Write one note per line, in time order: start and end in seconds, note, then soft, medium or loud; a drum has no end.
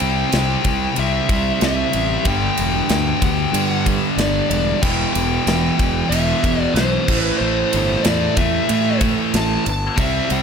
0.00 0.23 C2 loud
0.00 1.27 C3 medium
0.00 1.31 G3 medium
0.00 1.28 C4 loud
0.00 1.01 G5 loud
0.00 ride medium
0.32 0.55 C2 loud
0.32 snare loud
0.32 ride loud
0.64 0.87 C2 loud
0.64 kick medium
0.64 ride medium
0.96 1.20 C2 medium
0.96 2.24 C3 medium
0.96 2.27 G3 medium
0.96 2.25 C4 loud
0.96 1.63 E5 loud
0.96 ride loud
1.29 1.51 C2 loud
1.29 1.63 G3 medium
1.29 1.60 C4 loud
1.29 kick medium
1.29 ride medium
1.33 1.60 C3 medium
1.61 1.84 C2 loud
1.61 2.24 C3 medium
1.61 2.27 G3 medium
1.61 2.26 C4 medium
1.61 2.29 E5 medium
1.61 snare loud
1.61 ride loud
1.93 2.16 A1 medium
1.93 ride medium
2.24 2.48 G1 loud
2.24 3.84 G2 medium
2.24 3.85 D3 medium
2.24 2.89 G5 loud
2.24 kick loud
2.24 ride loud
2.28 3.84 G3 loud
2.57 2.80 E1 medium
2.57 ride medium
2.89 3.12 D2 medium
2.89 3.24 G5 medium
2.89 snare loud
2.89 ride loud
3.22 3.44 D2 medium
3.22 3.67 G5 medium
3.22 kick medium
3.22 ride medium
3.52 4.80 G2 medium
3.52 3.97 G2 medium
3.52 4.81 D3 medium
3.52 4.81 G3 medium
3.52 ride loud
3.67 3.84 F#5 medium
3.85 4.16 G2 medium
3.85 4.17 D3 medium
3.85 4.17 G3 loud
3.85 kick medium
3.85 ride medium
4.17 4.40 G1 medium
4.17 4.81 G2 medium
4.17 4.82 D3 medium
4.17 4.82 G3 medium
4.17 4.49 D5 medium
4.17 snare loud
4.17 ride loud
4.50 4.72 E1 medium
4.50 4.84 D5 loud
4.50 ride medium
4.82 5.05 E1 medium
4.82 6.42 E2 medium
4.82 6.43 B2 medium
4.82 6.42 E3 loud
4.82 5.12 G5 loud
4.82 kick loud
4.82 crash loud
5.13 5.37 E1 medium
5.13 6.14 G5 loud
5.13 ride medium
5.47 5.69 E1 medium
5.47 snare loud
5.47 ride loud
5.79 6.02 E1 medium
5.79 kick medium
5.79 ride medium
6.09 6.33 E1 medium
6.09 7.06 E2 medium
6.09 7.07 B2 medium
6.09 7.08 E3 medium
6.09 6.60 E5 medium
6.09 ride loud
6.43 6.66 E1 medium
6.43 6.75 B2 medium
6.43 6.79 E3 medium
6.43 kick medium
6.43 ride medium
6.47 6.74 E2 medium
6.60 6.77 D5 medium
6.74 6.97 B1 loud
6.74 7.06 E2 medium
6.74 7.07 B2 medium
6.74 7.18 C5 medium
6.74 snare loud
6.74 ride medium
6.79 7.09 E3 medium
7.07 7.30 A1 medium
7.07 8.67 A2 medium
7.07 8.70 E3 loud
7.07 8.69 A3 loud
7.07 kick loud
7.07 crash loud
7.18 7.36 B4 medium
7.38 7.63 A1 loud
7.38 8.06 C5 loud
7.73 7.95 G1 loud
7.73 ride medium
8.03 8.27 E2 loud
8.03 8.37 D5 medium
8.03 snare loud
8.03 ride loud
8.36 8.59 E2 medium
8.36 9.64 A2 medium
8.36 9.64 E3 medium
8.36 9.63 A3 medium
8.36 8.98 E5 medium
8.36 kick loud
8.36 ride medium
8.68 8.99 A2 medium
8.68 9.13 A2 medium
8.68 9.00 E3 medium
8.68 ride loud
8.72 8.99 A3 medium
9.00 9.64 E3 medium
9.00 9.63 A3 loud
9.00 kick medium
9.00 ride medium
9.04 9.65 A2 medium
9.34 9.56 A1 loud
9.34 9.67 A5 loud
9.34 snare loud
9.34 ride loud
9.66 9.88 G1 loud
9.66 10.00 A5 loud
9.66 ride medium
9.97 10.19 C2 loud
9.97 10.43 C3 medium
9.97 10.43 G3 loud
9.97 10.43 C4 loud
9.97 10.32 E5 loud
9.97 kick loud
9.97 ride loud
10.30 10.43 C2 medium
10.30 10.43 G5 loud
10.30 ride medium